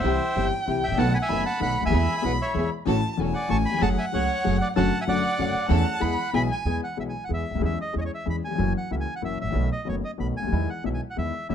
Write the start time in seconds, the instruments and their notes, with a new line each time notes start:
Already playing: bandoneon C5 E5
0.00 upright piano B1, upright bass B1, string section C4 E4 G4, violin G5
0.04 upright bass C2, upright piano C2 C3 E3 G3 C4 G4
0.35 upright piano G1 G2 E3 G3 C4 G4, upright bass G1, string section C4 E4 G4
0.67 upright bass C2, upright piano C2 C3 E3 G3 C4 G4, string section C4 E4 G4
0.83 bandoneon E5 G5
0.87 upright piano G#1, upright bass G#1
0.91 upright bass A1, upright piano A1 A#1
0.96 upright bass A#1 B1, upright piano B1 B2 D#3 A3 B3 F#4, string section B3 D#4 A4, violin F#5, bandoneon F#5 A5
1.14 bandoneon G#5 B5
1.22 bandoneon E5 G#5
1.28 upright piano F#1 F#2 D#3 A3 B3 F#4, upright bass F#1, string section B3 D#4 A4, violin B5
1.46 bandoneon F#5 A5
1.60 upright piano B1 B2 D#3 A3 B3 F#4, upright bass B1, string section B3 D#4 A4, bandoneon F#5 B5
1.80 upright piano C#2 D2, upright bass C#2
1.86 upright bass D2, upright piano D#2, bandoneon E5 G#5
1.90 upright bass D#2, upright piano E2 E3 G#3 B3 G#4, string section B3 E4 G#4, violin B5
1.94 upright bass E2
2.17 bandoneon E5 G#5
2.22 upright piano B1 B2 E3 G#3 B3 G#4, upright bass B1, string section B3 E4 G#4, bandoneon F#5
2.26 bandoneon B4
2.42 bandoneon C#5 E5
2.54 upright piano E2 E3 G#3 B3 G#4, upright bass E2, string section B3 E4 G#4
2.85 upright piano A1 A2 E3 A3 C#4 F#4, upright bass A1, string section C#4 F#4 A4, violin A5
3.13 upright piano E2 A3 C#4, violin A5
3.17 upright piano E1 E3 F#4, upright bass E1, string section C#4 F#4 A4, violin G#5
3.34 bandoneon D5 F#5
3.48 upright piano A1 A2 E3 A3 C#4 F#4, upright bass A1, string section C#4 F#4 A4, bandoneon A5 C#6
3.65 bandoneon G#5 B5
3.70 upright piano D#2 E2
3.78 upright bass F#1, upright piano F2 F#2 F#3 A3 C#4 G#4, string section A3 F#4 G#4, violin F#5, bandoneon A5
3.83 bandoneon F#5
3.98 bandoneon E5 G#5
4.12 upright piano C#2 C#3 F#3 A3 C#4 G#4, upright bass C#2, string section A3 F#4 G#4, bandoneon C#5 F#5
4.44 upright bass F#1, upright piano F#2 F#3 A3 C#4 G#4, string section A3 F#4 G#4
4.61 bandoneon D5 F#5
4.76 upright bass F#1, upright piano F#2 D3 F#3 A3 C#4 F#4, string section C#4 D4 F#4, violin F#5, bandoneon F#5 A5
5.01 bandoneon E5 G#5
5.07 upright bass F#1, upright piano F#2 D3 F#3 A3 C#4 F#4, string section C#4 D4 F#4, bandoneon D5 F#5
5.38 upright bass F#1, upright piano F#2 D3 F#3 A3 C#4 F#4, string section C#4 D4 F#4
5.68 upright piano E2 E3 A3 C#4 A4, upright bass E2, string section C#4 E4 A4, violin A5
6.00 upright piano E2 E3 G#3 B3 G#4, upright bass E2, string section B3 E4 G#4, violin B5
6.33 upright piano B1 B2 E3 G#3 B3 G#4, upright bass B1, string section B3 E4 G#4, violin G#5, bandoneon B5
6.52 bandoneon G#5
6.65 upright bass E2, upright piano E2 E3 G#3 B3 G#4
6.84 bandoneon F#5
6.97 upright piano B1 B2 E3 G#3 B3 G#4, upright bass B1, bandoneon E5
7.09 bandoneon G#5
7.24 bandoneon F#5
7.29 upright piano E2 E3 G#3 B3 G#4, upright bass E2
7.34 bandoneon E5
7.51 upright piano C#2, upright bass C#2
7.55 upright bass D2, upright piano D2 D#2
7.60 upright bass D#2 E2, upright piano E2 E3 G#3 C#4 G#4
7.65 bandoneon E5
7.81 bandoneon D#5
7.93 upright piano E2 E3 G#3 C#4 G#4, upright bass E2
7.98 bandoneon C#5 D#5
8.05 bandoneon C#5
8.14 bandoneon E5
8.25 upright piano E2 E3 G#3 C#4 G#4, upright bass E2
8.30 bandoneon B5
8.44 upright piano D#2, bandoneon G#5
8.51 upright piano E2
8.55 upright bass F#1, upright piano F2 F#2 E3 F#3 A#3 C#4 F#4
8.78 bandoneon F#5
8.91 upright piano C#2 C#3 E3 A#3 C#4 F#4, upright bass C#2, bandoneon E5
9.00 bandoneon G#5
9.16 bandoneon F#5
9.22 upright bass F#1, upright piano F#2 E3 F#3 A#3 C#4 F#4, bandoneon E5
9.41 upright piano G#1 A1, upright bass G#1, bandoneon E5
9.48 upright bass A1 A#1, upright piano A#1 D#3
9.52 upright piano B1 B2 A3 B3 F#4, upright bass B1
9.72 bandoneon D#5
9.85 upright piano F#1 F#2 D#3 A3 B3 F#4, upright bass F#1, bandoneon C#5
10.04 bandoneon D#5
10.18 upright piano B1 B2 D#3 A3 B3 F#4, upright bass B1, bandoneon B5
10.37 upright piano C#2, upright bass C#2, bandoneon G#5
10.43 upright piano D2 D#2, upright bass D2
10.48 upright bass D#2
10.52 upright piano E2 D#3 E3 G#3 B3 E4, upright bass E2
10.70 bandoneon F#5
10.84 upright piano B1 B2 D#3 G#3 B3 E4, upright bass B1, bandoneon E5
10.94 bandoneon G#5
11.10 bandoneon F#5
11.16 upright piano E2 D#3 E3 G#3 B3 E4, upright bass E2, bandoneon E5
11.49 upright piano A1 A2 E3 A3 C#4 A4, upright bass A1, bandoneon E5